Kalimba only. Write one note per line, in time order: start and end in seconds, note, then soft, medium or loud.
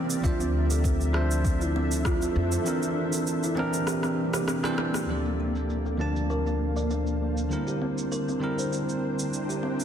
0.00 0.23 C4 loud
0.24 0.39 F4 medium
0.40 0.69 C4 medium
0.71 0.79 A4 medium
0.85 0.94 C4 medium
1.62 1.75 E4 medium
1.76 2.04 C4 loud
2.06 2.21 F4 loud
2.22 2.51 C4 medium
2.52 2.60 A4 medium
2.66 2.76 C4 medium
3.44 3.57 E4 medium
3.57 3.86 C4 loud
3.87 4.03 G4 loud
4.04 4.16 C4 medium
4.34 4.46 G4 loud
4.48 4.57 C4 loud
4.78 4.94 C4 medium
4.94 5.08 G4 medium
5.09 5.18 D4 medium
5.86 5.99 A4 medium
5.99 6.28 D4 medium
6.30 6.45 A#4 medium
6.46 6.75 D4 medium
6.76 6.84 D5 medium
6.90 7.00 D4 medium
7.67 7.80 G4 medium
7.82 8.10 C4 medium
8.12 8.27 A#4 medium
8.29 8.57 C4 medium
8.59 8.66 C5 medium
8.73 8.82 C4 medium
9.49 9.63 G4 medium
9.63 9.84 C4 medium